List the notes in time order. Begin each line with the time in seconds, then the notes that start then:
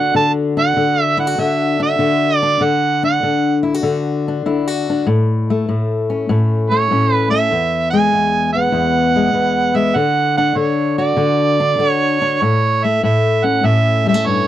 Already playing: D3 A3 D4 F#4 F#5
0.15 D3 A5
0.57 D4 F#5
0.77 D3
1.02 E5
1.17 E4 F#5
1.27 F#4
1.38 D3 E5
1.80 D4 E5
1.99 D3 F#4
2.37 D5
2.43 D4
2.61 D3 F#5
3.03 D4 F#5
3.23 D3
3.63 E4
3.74 F#4
3.83 D3
4.28 D4
4.46 D3 E4
4.67 F#4
4.90 D4
5.07 A2
5.50 A3
5.69 A2
6.10 C#4
6.29 A2
6.70 A3 C#5
6.91 A2 C#4
7.14 B4
7.30 A3 E5
7.51 E2
7.90 G#3 G#5
8.13 E2
8.53 B3 F#5
8.72 E2
9.16 G#3
9.33 E2 B3
9.75 G#3 E5
9.95 D3 F#5
10.37 D4 F#5
10.56 D3 C#5
10.98 F#4 D5
11.17 D3
11.60 D4
11.79 D3 F#4
11.87 C#5
12.22 D4
12.42 A2 C#5
12.84 A3 E5
13.03 A2 E5
13.44 C#4 F#5
13.63 A2 E5
14.07 G3 E5
14.14 A3
14.25 G2 C#5